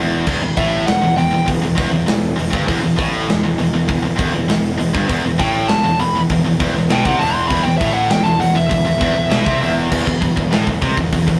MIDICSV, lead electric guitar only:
0, 0, Header, 1, 2, 480
1, 0, Start_track
1, 0, Tempo, 602410
1, 222, Time_signature, 4, 2, 24, 8
1, 9080, End_track
2, 0, Start_track
2, 0, Title_t, "Lead electric guitar"
2, 0, Program_c, 0, 29
2, 458, Note_on_c, 0, 76, 94
2, 692, Note_off_c, 0, 76, 0
2, 696, Note_on_c, 0, 78, 92
2, 931, Note_off_c, 0, 78, 0
2, 934, Note_on_c, 0, 79, 96
2, 1170, Note_off_c, 0, 79, 0
2, 4300, Note_on_c, 0, 79, 104
2, 4527, Note_on_c, 0, 81, 96
2, 4532, Note_off_c, 0, 79, 0
2, 4765, Note_off_c, 0, 81, 0
2, 4785, Note_on_c, 0, 83, 122
2, 4927, Note_off_c, 0, 83, 0
2, 5517, Note_on_c, 0, 79, 103
2, 5622, Note_off_c, 0, 79, 0
2, 5625, Note_on_c, 0, 78, 91
2, 5730, Note_on_c, 0, 81, 106
2, 5738, Note_off_c, 0, 78, 0
2, 5850, Note_off_c, 0, 81, 0
2, 5850, Note_on_c, 0, 84, 113
2, 5958, Note_off_c, 0, 84, 0
2, 5961, Note_on_c, 0, 83, 100
2, 6081, Note_on_c, 0, 79, 104
2, 6086, Note_off_c, 0, 83, 0
2, 6191, Note_off_c, 0, 79, 0
2, 6194, Note_on_c, 0, 76, 102
2, 6320, Note_off_c, 0, 76, 0
2, 6323, Note_on_c, 0, 78, 101
2, 6446, Note_off_c, 0, 78, 0
2, 6461, Note_on_c, 0, 79, 103
2, 6562, Note_off_c, 0, 79, 0
2, 6562, Note_on_c, 0, 81, 106
2, 6686, Note_off_c, 0, 81, 0
2, 6699, Note_on_c, 0, 78, 113
2, 6813, Note_on_c, 0, 76, 94
2, 6815, Note_off_c, 0, 78, 0
2, 7744, Note_off_c, 0, 76, 0
2, 9080, End_track
0, 0, End_of_file